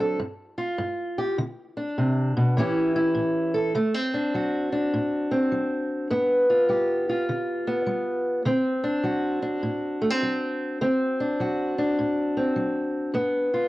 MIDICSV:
0, 0, Header, 1, 2, 480
1, 0, Start_track
1, 0, Tempo, 588813
1, 1131, Time_signature, 4, 2, 24, 8
1, 11154, End_track
2, 0, Start_track
2, 0, Title_t, "Steel-string acoustic guitar"
2, 0, Program_c, 0, 25
2, 0, Note_on_c, 0, 50, 70
2, 0, Note_on_c, 0, 54, 67
2, 0, Note_on_c, 0, 60, 72
2, 0, Note_on_c, 0, 62, 62
2, 1, Note_on_c, 0, 69, 57
2, 130, Note_off_c, 0, 50, 0
2, 146, Note_off_c, 0, 54, 0
2, 147, Note_off_c, 0, 62, 0
2, 148, Note_off_c, 0, 69, 0
2, 152, Note_off_c, 0, 60, 0
2, 159, Note_on_c, 0, 43, 78
2, 472, Note_on_c, 0, 65, 63
2, 611, Note_off_c, 0, 43, 0
2, 639, Note_on_c, 0, 43, 84
2, 964, Note_on_c, 0, 67, 68
2, 1092, Note_off_c, 0, 43, 0
2, 1107, Note_off_c, 0, 65, 0
2, 1112, Note_off_c, 0, 67, 0
2, 1127, Note_on_c, 0, 50, 87
2, 1441, Note_on_c, 0, 62, 57
2, 1577, Note_off_c, 0, 50, 0
2, 1612, Note_on_c, 0, 48, 55
2, 1925, Note_off_c, 0, 48, 0
2, 1929, Note_on_c, 0, 47, 71
2, 2073, Note_off_c, 0, 62, 0
2, 2093, Note_on_c, 0, 45, 81
2, 2096, Note_off_c, 0, 47, 0
2, 2101, Note_on_c, 0, 52, 64
2, 2108, Note_on_c, 0, 61, 63
2, 2112, Note_on_c, 0, 64, 65
2, 2119, Note_on_c, 0, 67, 66
2, 2401, Note_off_c, 0, 64, 0
2, 2411, Note_on_c, 0, 64, 64
2, 2542, Note_off_c, 0, 45, 0
2, 2565, Note_on_c, 0, 45, 83
2, 2884, Note_off_c, 0, 67, 0
2, 2887, Note_on_c, 0, 69, 67
2, 3018, Note_off_c, 0, 45, 0
2, 3037, Note_off_c, 0, 69, 0
2, 3039, Note_off_c, 0, 64, 0
2, 3044, Note_off_c, 0, 61, 0
2, 3055, Note_on_c, 0, 50, 80
2, 3060, Note_on_c, 0, 57, 67
2, 3061, Note_off_c, 0, 52, 0
2, 3215, Note_off_c, 0, 57, 0
2, 3215, Note_on_c, 0, 60, 54
2, 3374, Note_on_c, 0, 62, 67
2, 3504, Note_off_c, 0, 50, 0
2, 3540, Note_on_c, 0, 54, 60
2, 3546, Note_on_c, 0, 66, 51
2, 3846, Note_off_c, 0, 62, 0
2, 3850, Note_on_c, 0, 62, 58
2, 3987, Note_off_c, 0, 54, 0
2, 4022, Note_on_c, 0, 45, 67
2, 4321, Note_off_c, 0, 60, 0
2, 4331, Note_on_c, 0, 60, 60
2, 4468, Note_off_c, 0, 45, 0
2, 4498, Note_on_c, 0, 54, 70
2, 4946, Note_off_c, 0, 54, 0
2, 4960, Note_off_c, 0, 60, 0
2, 4976, Note_on_c, 0, 43, 86
2, 4980, Note_on_c, 0, 59, 71
2, 4985, Note_off_c, 0, 66, 0
2, 5294, Note_off_c, 0, 62, 0
2, 5297, Note_on_c, 0, 65, 62
2, 5426, Note_off_c, 0, 43, 0
2, 5453, Note_on_c, 0, 55, 64
2, 5459, Note_on_c, 0, 67, 52
2, 5773, Note_off_c, 0, 65, 0
2, 5783, Note_on_c, 0, 65, 67
2, 5903, Note_off_c, 0, 55, 0
2, 5942, Note_on_c, 0, 50, 65
2, 6245, Note_off_c, 0, 59, 0
2, 6255, Note_on_c, 0, 59, 62
2, 6388, Note_off_c, 0, 50, 0
2, 6411, Note_on_c, 0, 55, 70
2, 6862, Note_off_c, 0, 55, 0
2, 6878, Note_off_c, 0, 67, 0
2, 6881, Note_off_c, 0, 59, 0
2, 6885, Note_off_c, 0, 65, 0
2, 6891, Note_on_c, 0, 50, 88
2, 6897, Note_on_c, 0, 60, 70
2, 7202, Note_on_c, 0, 62, 69
2, 7341, Note_off_c, 0, 50, 0
2, 7364, Note_on_c, 0, 54, 65
2, 7371, Note_on_c, 0, 66, 51
2, 7678, Note_off_c, 0, 62, 0
2, 7681, Note_on_c, 0, 62, 61
2, 7817, Note_off_c, 0, 54, 0
2, 7848, Note_on_c, 0, 45, 66
2, 8161, Note_off_c, 0, 60, 0
2, 8164, Note_on_c, 0, 57, 56
2, 8237, Note_off_c, 0, 57, 0
2, 8237, Note_on_c, 0, 60, 54
2, 8298, Note_off_c, 0, 45, 0
2, 8336, Note_on_c, 0, 54, 71
2, 8781, Note_off_c, 0, 54, 0
2, 8807, Note_off_c, 0, 60, 0
2, 8812, Note_on_c, 0, 50, 81
2, 8815, Note_on_c, 0, 60, 73
2, 8840, Note_off_c, 0, 62, 0
2, 9131, Note_on_c, 0, 62, 60
2, 9258, Note_off_c, 0, 50, 0
2, 9289, Note_off_c, 0, 66, 0
2, 9292, Note_on_c, 0, 54, 58
2, 9300, Note_on_c, 0, 66, 53
2, 9601, Note_off_c, 0, 62, 0
2, 9605, Note_on_c, 0, 62, 61
2, 9738, Note_off_c, 0, 54, 0
2, 9771, Note_on_c, 0, 45, 69
2, 10073, Note_off_c, 0, 60, 0
2, 10083, Note_on_c, 0, 60, 54
2, 10216, Note_off_c, 0, 45, 0
2, 10237, Note_on_c, 0, 54, 65
2, 10688, Note_off_c, 0, 54, 0
2, 10708, Note_off_c, 0, 60, 0
2, 10709, Note_on_c, 0, 43, 86
2, 10715, Note_on_c, 0, 59, 68
2, 10731, Note_off_c, 0, 66, 0
2, 11032, Note_off_c, 0, 62, 0
2, 11035, Note_on_c, 0, 65, 58
2, 11154, Note_off_c, 0, 43, 0
2, 11154, Note_off_c, 0, 59, 0
2, 11154, Note_off_c, 0, 65, 0
2, 11154, End_track
0, 0, End_of_file